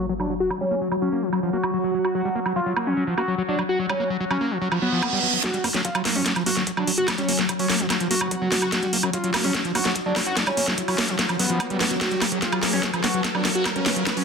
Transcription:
Already playing: F#3 F#4 C#5 F#5, sub drop
0.09 F#3
0.20 F#3 D4, high woodblock
0.30 F#3
0.40 F#4
0.50 F#3, high woodblock
0.61 G3 C#4
0.71 A#3
0.81 F#3
0.91 F#3, high woodblock
1.02 F#3 C#4
1.12 A#3
1.22 F3
1.33 F#3, high woodblock
1.43 F3
1.53 A#3 F#4
1.63 F#3, high woodblock
1.74 F#3
1.84 F#3
1.94 F#3
2.05 F#4, high woodblock
2.15 F#3 F#4
2.25 G3
2.35 A#3
2.46 F#3, high woodblock
2.56 F#3 F4
2.66 F#3
2.76 A#3, high woodblock
2.87 F3 C#4
2.97 F#3
3.07 F3
3.18 A#3 F#4, high woodblock
3.28 F#3
3.38 F#3
3.48 F#3 D4
3.59 F#3, high woodblock
3.69 F#4
3.79 F#3
3.89 G3 C#4, high woodblock
4.00 A#3
4.10 F#3
4.20 F#3
4.31 F#3 C#4, high woodblock
4.41 A#3
4.51 F3
4.61 F#3, reverse cymbal
4.72 F3, high woodblock
4.82 F#3 B3
4.92 F3
5.02 A#3, high woodblock
5.13 G3
5.23 F#3
5.33 F#3
5.44 F#3 F#4, kick, snare, closed hi-hat, riser
5.54 G3, closed hi-hat
5.64 F#1 A#3, open hi-hat, high woodblock
5.74 F#2 F#3, snare, closed hi-hat
5.85 F#3 F4, kick, closed hi-hat
5.95 F#3, closed hi-hat, high woodblock
6.05 F#1 A#3, snare, open hi-hat
6.09 C#5
6.15 F#1 F3 C#4, open hi-hat
6.26 F#3, kick, snare, closed hi-hat
6.36 F3, closed hi-hat, high woodblock
6.46 G1 A#3 F#4, open hi-hat
6.51 F#5
6.57 G1 F#3, snare
6.67 F#3, kick, closed hi-hat
6.77 F#1 F#3 D4, high woodblock
6.87 F#1 F#3, open hi-hat
6.98 F#1 F#4, closed hi-hat
7.08 F#3, kick, snare, closed hi-hat, high woodblock
7.18 G3 C#4, closed hi-hat
7.28 F#1 A#3, open hi-hat
7.39 F#1 F#3, snare
7.49 F#3, kick, closed hi-hat, high woodblock
7.59 F#3 C#4, open hi-hat
7.70 F#2 A#3, snare, open hi-hat
7.80 F#1 F3, closed hi-hat
7.90 F#3, kick, snare, closed hi-hat, high woodblock
8.00 F3, closed hi-hat
8.11 F#1 A#3 F#4, open hi-hat
8.21 F#1 F#3, closed hi-hat, high woodblock
8.31 F#3, kick, closed hi-hat
8.42 F#1 F#3
8.52 F#1 F#3, snare, open hi-hat
8.62 F#1 F#4, closed hi-hat, high woodblock
8.72 F#3 F#4, kick, snare, closed hi-hat
8.83 G3, closed hi-hat
8.93 F#1 A#3, open hi-hat
9.03 F#2 F#3, high woodblock
9.13 F#3 F4, kick, closed hi-hat
9.24 F#3, closed hi-hat
9.34 F#1 A#3, snare, open hi-hat, high woodblock
9.44 F#1 F3 C#4, open hi-hat
9.54 F#3, kick, snare, closed hi-hat
9.65 F3, closed hi-hat
9.75 G1 A#3 F#4, open hi-hat, high woodblock
9.85 G1 F#3, snare, closed hi-hat
9.96 F#3, kick, closed hi-hat
10.06 F#1 F#3 D4
10.16 F#1 F#3, snare, open hi-hat, high woodblock
10.26 F#1 F#4, closed hi-hat
10.37 F#3, kick, snare, closed hi-hat
10.47 G3 C#4, closed hi-hat, high woodblock
10.57 F#1 A#3, open hi-hat
10.68 F#1 F#3, snare
10.78 F#3, kick, closed hi-hat
10.88 F#3 C#4, open hi-hat, high woodblock
10.98 F#2 A#3, snare, open hi-hat
11.09 F#1 F3, closed hi-hat
11.19 F#3, kick, snare, closed hi-hat
11.29 F3, closed hi-hat, high woodblock
11.39 F#1 F#3 B3, open hi-hat
11.50 F#1 F3, closed hi-hat
11.60 A#3, kick, closed hi-hat, high woodblock
11.70 F#1 G3, closed hi-hat
11.81 F#1 F#3, snare, open hi-hat
11.91 F#1 F#3, closed hi-hat
12.01 F#3 B3 F#4 F5, kick, snare, closed hi-hat
12.11 G3, closed hi-hat
12.22 F#1 A#3, snare, open hi-hat, high woodblock
12.32 F#2 F#3, closed hi-hat
12.42 F#3 F4, kick, snare, closed hi-hat
12.52 F#3, closed hi-hat, high woodblock
12.63 F#1 A#3, snare, open hi-hat
12.73 F#1 F3 C#4, open hi-hat
12.83 F#3, kick, snare
12.94 F3, closed hi-hat, high woodblock
13.04 G1 A#3 F#4, snare, open hi-hat
13.14 G1 F#3, closed hi-hat
13.24 F#3, kick, snare, closed hi-hat
13.35 F#1 F#3 D4, high woodblock
13.45 F#1 F#3, snare, open hi-hat
13.55 F#1 F#4, closed hi-hat
13.65 F#3, kick, snare, closed hi-hat, high woodblock
13.76 G3 C#4, closed hi-hat
13.86 F#1 A#3, snare, open hi-hat
13.96 F#1 F#3, closed hi-hat
14.07 F#3, kick, snare, closed hi-hat, high woodblock
14.17 F#3 C#4, open hi-hat

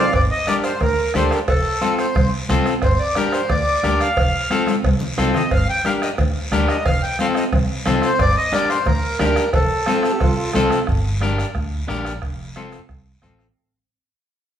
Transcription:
Already playing: D5 F5
0.13 G1 D5, bombo low, bombo rim, cowbell, high conga, long guiro
0.31 D#5
0.47 D4 G4 A#4 D5, bombo rim, high conga, short guiro
0.64 C5, bombo rim, short guiro
0.81 D2 A#4, bombo low, bombo rim, cowbell, high conga, low conga, long guiro
1.14 D2 D4 G4 A4 C5, bombo rim, high conga, low conga, short guiro
1.31 A#4, bombo rim, short guiro
1.48 F1 A4, bombo low, bombo rim, cowbell, high conga, long guiro
1.81 C4 F4 A4, bombo rim, high conga, short guiro
1.98 C5, bombo rim, short guiro
2.15 C2, bombo low, bombo rim, cowbell, high conga, low conga, long guiro
2.49 C2 C4 F4 A4, bombo low, bombo rim, high conga, low conga, short guiro
2.66 bombo rim, short guiro
2.82 G1 C5, bombo low, bombo rim, cowbell, high conga, long guiro
2.99 D5
3.15 D4 G4 A#4, bombo rim, high conga, short guiro
3.32 C5, bombo rim, short guiro
3.49 D2 D5, bombo low, bombo rim, cowbell, high conga, low conga, long guiro
3.83 D2 D4 G4 A#4, bombo rim, high conga, short guiro
4.00 F5, bombo rim, short guiro
4.17 F1, bombo low, bombo rim, cowbell, high conga, long guiro
4.50 C4 F4 A4, bombo rim, high conga, short guiro
4.67 bombo rim, high conga, short guiro
4.83 C2, bombo low, bombo rim, cowbell, high conga, long guiro
5.00 low conga
5.18 C2 C4 F4 A4, bombo rim, low timbale, short guiro
5.34 D#5, bombo rim, low conga, short guiro
5.51 G1 F5, bombo low, bombo rim, cowbell, high conga, long guiro
5.70 G5
5.84 D4 G4 A#4 F5, bombo rim, high conga, short guiro
6.02 D#5, bombo rim, short guiro
6.18 D2, bombo low, bombo rim, cowbell, high conga, low conga, long guiro
6.51 D2 D4 G4 A#4, bombo rim, high conga, short guiro
6.68 D#5, bombo rim, short guiro
6.85 F1 F5, bombo low, bombo rim, cowbell, high conga, low conga, long guiro
7.02 G5
7.19 C4 F4 A4 F5, bombo rim, high conga, short guiro
7.35 D#5, bombo rim, short guiro
7.52 C2, bombo low, bombo rim, cowbell, high conga, low conga, long guiro
7.86 C2 C4 F4 A4, bombo rim, high conga, low conga, low timbale, short guiro
8.02 C5, bombo rim, short guiro
8.19 G1 D5, bombo low, bombo rim, cowbell, high conga, long guiro
8.37 D#5
8.52 D4 G4 A#4 D5, bombo rim, high conga, short guiro
8.70 C5, bombo rim, short guiro
8.86 D2 A#4, bombo low, bombo rim, cowbell, high conga, low conga, long guiro
9.19 D2 D4 G4 A#4, bombo rim, high conga, low conga, low timbale, short guiro
9.36 bombo rim, short guiro
9.53 F1 A4, bombo low, bombo rim, cowbell, high conga, low conga, long guiro
9.86 C4 F4 A4, bombo rim, high conga, short guiro
10.03 bombo rim, short guiro
10.12 G4
10.21 C2 F4, bombo low, bombo rim, cowbell, high conga, low conga, long guiro
10.37 F4
10.53 C2 C4 F4 A4, bombo rim, high conga, low conga, low timbale, short guiro
10.71 bombo rim, short guiro
10.87 G1, bombo low, bombo rim, long guiro
11.21 D4 G4 A#4, bombo rim, high conga, short guiro
11.38 bombo rim, short guiro
11.55 D2, bombo low, bombo rim, high conga, long guiro
11.88 A#1 D4 G4 A#4, bombo rim, high conga, short guiro
12.05 bombo rim, short guiro
12.22 F1, bombo low, bombo rim, high conga, long guiro
12.55 C4 F4 A4, bombo rim, high conga, short guiro
12.72 bombo rim, short guiro
12.89 C2, bombo low, bombo rim, high conga, long guiro
13.22 A1 C4 F4 A4, bombo low, bombo rim, high conga, short guiro
13.39 bombo rim, short guiro

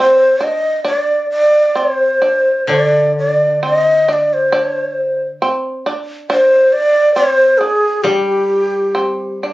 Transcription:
0.00 C4 C5
0.40 D4 D#5
0.85 D4 D5
1.30 D5
1.75 C4 C5
2.22 D4
2.67 D3 D4 D5
3.18 D5
3.63 C4 D#5
4.08 D4
4.13 D5
4.33 C5
4.52 D4
5.42 C4
5.86 D4
6.30 D4 C5
6.73 D5
7.15 C4 C5
7.58 D4 G#4
8.02 G3 D4 G4
8.95 C4
9.43 D4

